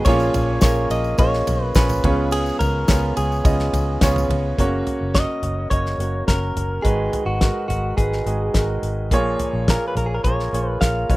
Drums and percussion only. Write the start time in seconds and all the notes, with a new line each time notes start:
0.05 kick, ride, tambourine
0.20 tambourine
0.34 floor tom, ride, tambourine
0.61 kick, snare, ride, tambourine
0.90 ride, tambourine
1.04 tambourine
1.18 kick, ride, tambourine
1.33 snare
1.47 floor tom, ride, tambourine
1.75 kick, snare, ride, tambourine
1.89 floor tom, tambourine
2.04 kick, floor tom, ride
2.31 ride, tambourine
2.46 tambourine
2.60 floor tom, ride, tambourine
2.88 kick, snare, ride, tambourine
3.17 ride, tambourine
3.32 tambourine
3.45 kick, ride, tambourine
3.59 snare
3.74 floor tom, ride, tambourine
4.01 kick, snare, ride, tambourine
4.16 floor tom, tambourine
4.30 floor tom, ride
4.58 kick, closed hi-hat
4.87 closed hi-hat, floor tom
5.15 kick, snare, closed hi-hat
5.43 closed hi-hat, floor tom
5.71 kick, closed hi-hat
5.86 snare
6.00 closed hi-hat
6.28 kick, snare, closed hi-hat
6.57 closed hi-hat, floor tom
6.85 kick, closed hi-hat
7.13 closed hi-hat, floor tom
7.41 kick, snare, closed hi-hat
7.70 closed hi-hat, floor tom
7.98 kick, closed hi-hat
8.12 snare
8.27 closed hi-hat
8.54 kick, snare, closed hi-hat
8.83 closed hi-hat
9.11 kick, closed hi-hat
9.39 closed hi-hat, floor tom
9.68 kick, snare, closed hi-hat
9.97 closed hi-hat, floor tom
10.24 kick, closed hi-hat
10.39 snare
10.54 closed hi-hat
10.81 kick, snare, closed hi-hat
11.10 kick, closed hi-hat